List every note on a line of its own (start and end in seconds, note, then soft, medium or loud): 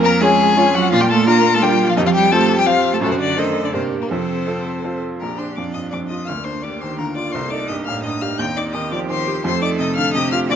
0.00 0.20 F2 loud
0.00 0.22 A#3 loud
0.00 0.23 A#4 loud
0.05 0.12 A#5 loud
0.20 0.72 G#3 loud
0.20 0.53 C#4 medium
0.20 0.53 F4 medium
0.20 0.56 G#4 medium
0.20 0.77 G#4 loud
0.20 0.54 C#5 medium
0.20 0.76 G#5 loud
0.57 0.89 C#4 medium
0.57 1.94 F4 loud
0.57 0.89 F4 medium
0.57 0.89 C#5 medium
0.73 0.89 F#3 loud
0.73 0.92 F#4 loud
0.73 0.91 F#5 loud
0.90 1.26 A#2 loud
0.90 0.94 F3 loud
0.90 1.02 F4 loud
0.90 1.02 F5 loud
1.01 1.05 G3 loud
1.01 1.09 G4 loud
1.01 1.09 G5 loud
1.09 1.26 A3 loud
1.09 1.29 A4 loud
1.09 1.17 A5 loud
1.27 1.53 A#3 loud
1.27 1.59 D4 medium
1.27 1.59 F4 medium
1.27 1.55 A#4 loud
1.27 1.59 A#4 medium
1.27 1.56 A#5 loud
1.53 1.63 A3 loud
1.53 1.65 A4 loud
1.53 1.64 A5 loud
1.61 1.88 G3 loud
1.61 1.94 D4 medium
1.61 1.94 F4 medium
1.61 1.90 G4 loud
1.61 1.94 A#4 medium
1.61 1.91 G5 loud
1.87 1.99 F3 loud
1.87 1.97 F4 loud
1.87 1.96 F5 loud
1.97 2.31 F2 loud
1.97 2.05 D#3 loud
1.97 2.01 D#4 loud
1.97 3.00 G4 loud
1.97 2.00 D#5 loud
2.06 2.14 F3 loud
2.06 2.10 F4 loud
2.06 2.10 F5 loud
2.14 2.32 G3 loud
2.14 2.31 G4 loud
2.14 2.33 G5 loud
2.31 2.57 A3 loud
2.31 2.63 C4 medium
2.31 2.63 F4 medium
2.31 2.61 A4 loud
2.31 2.64 C5 medium
2.31 2.58 A5 loud
2.58 2.61 G3 loud
2.58 2.69 G4 loud
2.58 2.68 G5 loud
2.66 2.75 F3 loud
2.66 2.98 C4 medium
2.66 2.98 F4 medium
2.66 2.95 F4 loud
2.66 2.98 C5 medium
2.66 2.95 F5 loud
2.92 2.96 A3 loud
2.92 3.01 A4 loud
2.92 3.02 A5 loud
3.01 3.36 F#2 medium
3.01 3.05 A2 loud
3.01 3.13 A3 loud
3.01 3.39 F#4 medium
3.01 3.11 A4 loud
3.11 3.15 C3 medium
3.11 3.20 C4 medium
3.11 3.15 C5 loud
3.19 3.37 D3 medium
3.19 3.36 D4 medium
3.19 3.40 D5 loud
3.35 3.63 D#3 medium
3.35 3.70 A3 medium
3.35 3.70 D4 medium
3.35 3.45 D#4 medium
3.35 3.75 A4 medium
3.35 3.70 C5 medium
3.35 3.66 D#5 loud
3.63 3.68 D3 medium
3.63 3.72 D4 medium
3.63 3.74 D5 medium
3.72 4.09 G2 medium
3.72 4.02 C3 medium
3.72 4.06 A#3 medium
3.72 4.00 C4 medium
3.72 4.06 D4 medium
3.72 4.11 G4 medium
3.72 4.07 A#4 medium
3.72 3.82 C5 medium
4.01 4.10 A#2 medium
4.01 4.12 A#3 medium
4.01 4.05 A#4 medium
4.10 4.46 F2 medium
4.10 5.00 C3 medium
4.10 5.02 C4 medium
4.10 5.02 A4 medium
4.10 5.00 C5 medium
4.47 4.80 C4 medium
4.47 4.80 F4 soft
4.47 4.80 A4 medium
4.84 5.17 C4 medium
4.84 5.17 F4 medium
4.84 5.17 A4 medium
5.20 6.25 A#1 medium
5.20 6.23 D4 soft
5.20 5.59 G4 medium
5.20 5.36 A#4 medium
5.20 5.39 A#5 medium
5.37 5.67 D4 soft
5.37 5.54 C5 medium
5.37 5.56 C6 medium
5.55 5.85 F2 soft
5.55 6.27 F4 soft
5.55 5.74 D5 medium
5.55 5.63 D6 medium
5.72 5.92 G2 soft
5.72 5.90 D#5 medium
5.72 5.81 D#6 medium
5.90 6.21 F2 soft
5.90 5.98 D5 medium
5.90 5.99 D6 medium
6.08 6.28 F4 soft
6.08 6.24 D#5 medium
6.08 6.29 D#6 medium
6.25 7.32 D2 medium
6.25 8.36 A#3 medium
6.25 6.62 D4 medium
6.25 6.33 F5 medium
6.25 6.46 F6 medium
6.44 6.74 D4 soft
6.44 6.64 C5 medium
6.44 6.65 C6 medium
6.62 6.92 D3 soft
6.62 7.00 G4 medium
6.62 6.80 D5 medium
6.62 6.82 D6 medium
6.80 7.00 D#3 soft
6.80 6.97 C5 medium
6.80 6.98 C6 medium
6.98 7.27 D3 medium
6.98 7.36 F4 medium
6.98 7.17 A#4 medium
6.98 7.05 A#5 medium
7.15 7.35 F4 medium
7.15 7.35 D5 medium
7.15 7.33 D6 medium
7.32 8.37 C2 medium
7.32 7.71 A4 medium
7.32 7.53 C5 medium
7.32 7.52 C6 medium
7.50 7.80 D#4 medium
7.50 7.70 D5 medium
7.50 7.67 D6 medium
7.68 7.97 G2 medium
7.68 8.04 G4 medium
7.68 7.86 D#5 medium
7.68 7.75 D#6 medium
7.85 8.05 A2 medium
7.85 8.03 F5 medium
7.85 8.02 F6 medium
8.03 8.33 G2 medium
8.03 8.74 D#4 medium
8.03 8.11 D#5 medium
8.03 8.23 D#6 loud
8.21 8.40 G4 medium
8.21 8.29 F5 medium
8.21 8.38 F6 loud
8.38 9.42 D#2 medium
8.38 9.41 C4 medium
8.38 8.58 G5 loud
8.38 8.46 G6 loud
8.57 8.86 D#4 medium
8.57 8.77 D5 medium
8.57 8.64 D6 loud
8.73 9.03 D#3 medium
8.73 9.44 G4 medium
8.73 8.93 D#5 medium
8.73 8.91 D#6 medium
8.92 9.10 F3 medium
8.92 9.00 D5 medium
8.92 8.99 D6 loud
9.10 9.38 D#3 medium
9.10 9.44 C5 medium
9.10 9.44 C6 loud
9.28 9.46 G4 medium
9.44 10.46 F2 medium
9.44 10.52 A3 medium
9.44 10.16 A4 loud
9.44 9.63 C5 loud
9.44 9.62 C6 loud
9.62 9.90 D#4 medium
9.62 9.79 D5 medium
9.62 9.69 D6 loud
9.79 10.08 C3 medium
9.79 9.87 D#5 loud
9.79 9.95 D#6 loud
9.96 10.15 D3 medium
9.96 10.13 F5 loud
9.96 10.13 F6 loud
10.14 10.43 C3 medium
10.14 10.52 G4 medium
10.14 10.31 D#5 loud
10.14 10.31 D#6 loud
10.32 10.50 F4 medium
10.32 10.39 F5 loud
10.32 10.39 F6 loud
10.49 10.56 A#1 medium
10.49 10.56 A#3 medium
10.49 10.56 F4 loud
10.49 10.56 D5 loud
10.49 10.56 D6 loud